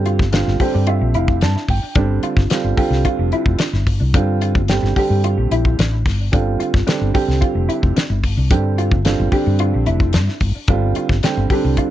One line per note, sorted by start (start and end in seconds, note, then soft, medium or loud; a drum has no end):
0.00 0.21 G2 loud
0.00 0.21 D3 medium
0.00 0.21 G3 medium
0.00 0.21 C4 medium
0.00 0.21 G4 loud
0.06 0.30 F4 medium
0.06 closed hi-hat medium
0.19 0.45 G1 medium
0.19 kick medium
0.19 snare soft
0.32 0.54 D3 medium
0.32 0.54 G3 medium
0.32 0.54 C4 medium
0.32 0.57 D4 medium
0.32 0.54 F4 medium
0.32 snare loud
0.32 closed hi-hat medium
0.47 0.59 G1 medium
0.47 snare soft
0.60 1.46 D3 medium
0.60 1.46 G3 medium
0.60 1.46 C4 medium
0.60 0.84 G4 medium
0.60 1.46 G4 medium
0.60 0.73 C5 medium
0.60 kick medium
0.60 open hi-hat medium
0.74 0.99 G2 medium
0.74 0.87 D5 medium
0.87 1.11 F4 medium
0.87 1.13 E5 medium
0.87 closed hi-hat medium
1.01 1.14 A#1 medium
1.14 1.44 F1 medium
1.14 1.38 E4 medium
1.14 1.40 F5 medium
1.14 closed hi-hat medium
1.28 kick medium
1.41 1.55 G2 medium
1.41 1.66 D4 medium
1.41 1.68 A5 medium
1.41 snare loud
1.41 closed hi-hat medium
1.56 snare soft
1.68 1.82 G1 medium
1.68 1.95 G5 medium
1.68 kick medium
1.68 open hi-hat medium
1.95 2.21 G1 medium
1.95 2.39 D3 medium
1.95 2.39 G3 medium
1.95 2.39 C4 medium
1.95 2.20 D4 medium
1.95 2.39 D4 medium
1.95 kick loud
1.95 closed hi-hat medium
2.23 2.47 F4 medium
2.23 closed hi-hat medium
2.36 2.49 G1 medium
2.36 kick medium
2.36 snare soft
2.50 2.72 D3 medium
2.50 2.72 G3 medium
2.50 2.72 C4 medium
2.50 2.74 D4 medium
2.50 2.72 F4 medium
2.50 muted fretless electric bass stroke soft
2.50 snare loud
2.50 closed hi-hat medium
2.64 2.77 G1 medium
2.77 3.63 D3 medium
2.77 3.63 G3 medium
2.77 3.63 C4 medium
2.77 3.63 F4 loud
2.77 3.02 G4 medium
2.77 muted fretless electric bass stroke soft
2.77 kick medium
2.77 open hi-hat medium
2.90 3.03 C2 medium
2.90 snare soft
3.05 3.29 F4 medium
3.05 kick medium
3.05 closed hi-hat medium
3.19 3.31 F1 medium
3.32 3.56 E4 medium
3.32 closed hi-hat medium
3.46 3.59 F1 medium
3.46 kick medium
3.59 3.83 D4 medium
3.59 snare medium
3.59 closed hi-hat medium
3.73 3.98 G1 medium
3.73 snare soft
3.87 kick medium
3.87 open hi-hat medium
4.00 4.15 C2 medium
4.14 4.57 G2 loud
4.14 4.57 D3 medium
4.14 4.57 G3 medium
4.14 4.57 C4 medium
4.14 4.38 D4 medium
4.14 4.58 F4 loud
4.14 kick loud
4.14 closed hi-hat medium
4.41 4.65 F4 medium
4.41 closed hi-hat medium
4.55 4.81 G1 medium
4.55 kick medium
4.68 4.90 D3 medium
4.68 4.90 G3 medium
4.68 4.90 C4 medium
4.68 4.93 D4 medium
4.68 4.91 G4 medium
4.68 snare loud
4.68 closed hi-hat medium
4.82 4.95 G1 medium
4.82 snare soft
4.96 5.82 D3 medium
4.96 5.82 G3 medium
4.96 5.82 C4 medium
4.96 5.20 G4 medium
4.96 5.82 G4 loud
4.96 kick medium
4.96 open hi-hat medium
5.10 5.35 G2 medium
5.24 5.48 F4 medium
5.24 closed hi-hat medium
5.37 5.50 A#1 medium
5.51 5.75 A#1 medium
5.51 5.75 E4 medium
5.51 closed hi-hat medium
5.65 kick medium
5.79 6.03 A1 medium
5.79 6.02 D4 medium
5.79 snare loud
5.79 closed hi-hat medium
6.06 6.30 G1 medium
6.06 kick medium
6.06 snare soft
6.06 open hi-hat medium
6.32 6.58 G1 medium
6.32 6.75 D3 medium
6.32 6.75 G3 medium
6.32 6.75 C4 medium
6.32 6.57 D4 medium
6.32 6.75 F4 medium
6.32 kick medium
6.32 closed hi-hat medium
6.60 6.83 F4 medium
6.60 muted fretless electric bass stroke soft
6.60 closed hi-hat medium
6.74 6.86 G1 medium
6.74 kick medium
6.74 snare soft
6.86 7.08 D3 medium
6.86 7.08 G3 medium
6.86 7.08 C4 medium
6.86 7.11 D4 medium
6.86 7.08 D4 medium
6.86 snare loud
6.86 closed hi-hat medium
7.01 7.13 G1 medium
7.14 7.99 D3 medium
7.14 8.00 G3 medium
7.14 8.00 C4 medium
7.14 7.38 G4 medium
7.14 8.00 G4 loud
7.14 muted fretless electric bass stroke soft
7.14 kick medium
7.14 open hi-hat medium
7.28 7.40 C2 medium
7.28 snare soft
7.41 7.65 F4 medium
7.41 kick medium
7.41 closed hi-hat medium
7.55 7.67 F1 medium
7.69 7.92 E4 medium
7.69 closed hi-hat medium
7.83 7.95 F1 medium
7.83 kick medium
7.96 8.20 D4 medium
7.96 snare loud
7.96 closed hi-hat medium
8.10 8.35 G1 medium
8.24 kick medium
8.24 open hi-hat medium
8.37 8.52 C2 medium
8.51 8.93 G2 loud
8.51 8.93 D3 medium
8.51 8.93 G3 medium
8.51 8.93 C4 medium
8.51 8.75 D4 medium
8.51 8.94 G4 medium
8.51 kick loud
8.51 closed hi-hat medium
8.78 9.02 F4 medium
8.78 closed hi-hat medium
8.92 9.17 G1 medium
8.92 kick medium
9.05 9.26 D3 medium
9.05 9.26 G3 medium
9.05 9.26 C4 medium
9.05 9.29 D4 medium
9.05 9.26 F4 medium
9.05 snare medium
9.05 closed hi-hat medium
9.19 9.31 G1 medium
9.31 10.17 D3 medium
9.31 10.17 G3 medium
9.31 10.17 C4 medium
9.31 10.17 D4 loud
9.31 9.56 G4 medium
9.31 kick medium
9.31 open hi-hat medium
9.46 9.71 G2 medium
9.59 9.83 F4 medium
9.59 closed hi-hat medium
9.74 9.86 A#1 medium
9.86 10.17 F1 medium
9.86 10.10 E4 medium
9.86 closed hi-hat medium
10.00 kick medium
10.13 10.27 G2 medium
10.13 10.38 D4 medium
10.13 snare medium
10.13 closed hi-hat medium
10.29 snare soft
10.40 10.54 G1 loud
10.40 kick medium
10.40 open hi-hat medium
10.68 10.93 G1 medium
10.68 11.11 D3 medium
10.68 11.11 G3 medium
10.68 11.12 C4 medium
10.68 10.93 D4 medium
10.68 11.12 F4 loud
10.68 kick loud
10.68 closed hi-hat medium
10.95 11.20 F4 medium
10.95 muted fretless electric bass stroke soft
10.95 closed hi-hat medium
11.09 11.22 G1 medium
11.09 kick medium
11.09 snare soft
11.23 11.45 D3 medium
11.23 11.45 G3 medium
11.23 11.45 C4 medium
11.23 11.47 D4 medium
11.23 11.45 G4 medium
11.23 muted fretless electric bass stroke soft
11.23 snare loud
11.23 closed hi-hat medium
11.37 11.49 G1 medium
11.50 11.90 D3 medium
11.50 11.90 G3 medium
11.50 11.90 C4 medium
11.50 11.90 D4 medium
11.50 11.74 G4 medium
11.50 kick medium
11.50 open hi-hat medium
11.64 11.77 C2 medium
11.77 11.90 F4 medium
11.77 kick medium
11.77 closed hi-hat medium